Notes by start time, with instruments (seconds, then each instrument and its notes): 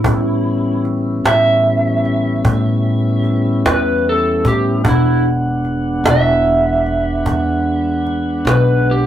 Already playing: electric slide guitar E4
0.04 upright bass A1, tonewheel organ G3 B3 C#4 E4, cajon bass
0.85 cajon slap
1.24 upright bass A1, electric slide guitar E5, cajon slap
2.05 cajon slap
2.44 upright bass A2, cajon bass
3.24 cajon slap
3.65 upright bass E2, electric slide guitar B4, cajon slap
4.09 electric slide guitar A4
4.44 upright bass A2, electric slide guitar G4, cajon bass
4.84 upright bass E1, tonewheel organ G#3 B3 D4 F#5, cajon bass
4.88 electric slide guitar E4
5.65 cajon slap
6.04 upright bass E1, cajon slap
6.11 electric slide guitar E5
6.86 cajon slap
7.26 upright bass E2, cajon bass, cajon slap
8.06 cajon slap
8.45 upright bass B1, cajon slap
8.49 electric slide guitar B4
8.91 electric slide guitar G4